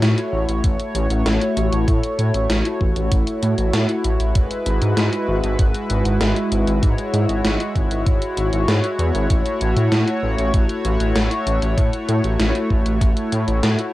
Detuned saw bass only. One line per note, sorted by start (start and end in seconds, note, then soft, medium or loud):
0.02 0.15 A2 loud
0.33 0.46 A1 medium
0.49 0.61 A1 medium
0.64 0.77 A1 loud
0.95 1.07 A1 medium
1.10 1.23 A1 medium
1.26 1.38 A1 loud
1.57 1.69 A1 medium
1.72 1.85 A1 medium
1.88 2.00 A2 loud
2.19 2.31 A2 medium
2.34 2.47 A1 medium
2.50 2.62 A1 loud
2.81 2.93 A1 medium
2.96 3.09 A1 medium
3.12 3.24 A1 loud
3.42 3.55 A2 medium
3.58 3.70 A1 medium
3.73 3.86 A2 loud
4.04 4.17 A1 medium
4.20 4.32 A1 medium
4.35 4.48 G#1 loud
4.66 4.79 G#1 medium
4.82 4.94 G#2 medium
4.97 5.09 G#2 loud
5.28 5.40 G#1 medium
5.43 5.56 G#1 medium
5.59 5.71 G#1 loud
5.90 6.02 G#1 medium
6.05 6.18 G#1 medium
6.21 6.33 G#1 loud
6.52 6.64 G#1 medium
6.67 6.80 G#1 medium
6.83 6.95 G#2 loud
7.13 7.26 G#2 medium
7.29 7.41 G#1 medium
7.45 7.57 G#1 loud
7.76 7.88 G#1 loud
7.91 8.03 G#1 medium
8.06 8.19 G#1 loud
8.37 8.50 G#1 medium
8.53 8.65 G#1 medium
8.68 8.81 G#2 loud
8.99 9.11 E2 medium
9.15 9.27 G#1 medium
9.30 9.43 A1 loud
9.61 9.73 A1 medium
9.77 9.89 A2 medium
9.92 10.04 A2 loud
10.23 10.35 A1 medium
10.38 10.51 A1 medium
10.54 10.66 A1 loud
10.85 10.97 A1 medium
11.00 11.13 A1 medium
11.16 11.28 A1 loud
11.47 11.59 A1 medium
11.62 11.75 A1 medium
11.78 11.90 A2 loud
12.09 12.21 A2 medium
12.24 12.36 A1 medium
12.40 12.52 A1 loud
12.70 12.83 A1 loud
12.86 12.98 A1 medium
13.01 13.14 A1 loud
13.32 13.45 A2 medium
13.48 13.60 A1 medium
13.63 13.76 A2 loud